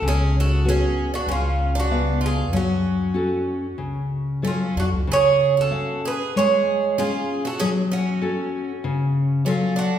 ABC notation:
X:1
M:4/4
L:1/16
Q:1/4=96
K:F#m
V:1 name="Bouzouki"
G2 A2 G3 F ^E3 F3 G2 | F12 ^E2 F2 | c3 A3 B2 c4 G3 A | G2 F8- F2 ^E2 F2 |]
V:2 name="Twelve-string acoustic guitar"
C2 F2 C3 D C3 D3 ^E2 | C12 C2 D2 | G3 F3 G2 G4 ^E3 F | C2 C8- C2 C2 D2 |]
V:3 name="Nylon-string guitar"
C,4 [B,CF]4 C,4 [C,B,^e]4 | F,4 [CFA]4 C,4 [F,Ac]4 | C,4 [C^e]4 G,4 [C^EG]4 | F,4 [CFA]4 C,4 [F,Ac]4 |]
V:4 name="Upright bass" clef=bass
C,,8 C,,8 | F,,8 C,,6 ^E,, C,, | z16 | z16 |]